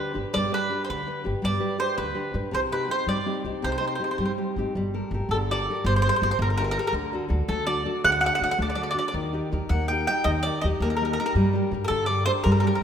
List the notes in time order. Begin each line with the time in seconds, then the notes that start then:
Already playing: D3 D4 G4 B4
0.14 G1 D4 G4 B4
0.33 G1 G3 D5
0.51 D4 G4 B4
0.70 D4 G4 B4
0.84 C5
0.89 D2 D3 B4
1.07 D4 G4 B4
1.24 G1 D4 G4 B4
1.42 G1 G3 D5
1.59 D4 G4 B4
1.78 D4 G4 B4 C5
1.98 D2 D3 B4
2.15 D4 G4 B4
2.34 G2 D4 G4 B4
2.51 C2 C3 C5
2.72 C4 D#4 G4 B4
2.88 C4 D#4 G4 C5
3.07 G2 G3 D5
3.26 C4 D#4 G4
3.45 C2 C4 D#4 G4
3.62 C2 C3 C5
3.72 C5
3.78 C4 D#4 G4 C5
3.87 C5
3.95 C4 C5
4.00 D#4 G4
4.04 C5
4.11 C5
4.18 G2 G3 C5
4.25 C5
4.37 C4 D#4 G4
4.56 G#1 C4 D#4 G4
4.75 G1 G3
4.94 G4 A4 A#4
5.11 G1 G4 A4 A#4
5.29 G1 A4
5.34 D3
5.51 G4 A4 A#4 D5
5.70 G4 A4 A#4
5.84 G1 C5
5.89 G3
5.96 C5
6.02 G4 C5
6.06 A4 A#4 C5
6.16 C5
6.22 G1 G4 A4 A#4 C5
6.31 C5
6.39 G1 D3 A#4
6.50 A#4
6.57 G4 A4 A#4
6.64 A#4
6.71 A#4
6.78 G4 A4 A#4
6.87 A#4
6.93 D2 D3
7.13 D4 F#4 A4
7.28 D2 D4 F#4 A4
7.48 D2 A3 A4
7.67 D4 F#4 A4 D5
7.85 D4 F#4 A4
8.04 D2 D3 F#5
8.12 F#5
8.19 D4 F#4 A4 F#5
8.26 F#5
8.35 D4 F#5
8.40 D2 F#4 A4 F#5
8.51 F#5
8.58 D2 A3 D5
8.70 D5
8.75 D4 F#4 A4 D5
8.83 D5
8.91 D4 F#4 D5
8.95 A4 D5
9.08 D5
9.14 D#2 D#3
9.33 D#4 G4 A#4
9.52 D#2 D#4 G4 A#4
9.69 D#2 A#3 F#5
9.88 D#4 G4 A#4 G5
10.07 D#4 G4 A#4 G5
10.24 D#2 D#3 D#5
10.43 D#4 G4 A#4 D5
10.61 D#2 D#4 G4 A#4 D#5
10.80 D#2 A#3 A#4
10.90 A#4
10.97 A#4
11.01 D#4 G4 A#4
11.13 A#4
11.20 D#4 G4 A#4
11.26 A#4
11.35 G2 G3
11.53 D4 G4 A#4
11.71 G2 D4 G4 A#4
11.84 A4 A#4
11.90 G2 D3
12.06 D4 G4 D5
12.10 A#4
12.26 D4 G4 A#4 C5
12.44 G2 G3 A#4
12.52 A#4
12.60 D4 G4 A#4
12.64 A#4
12.75 A#4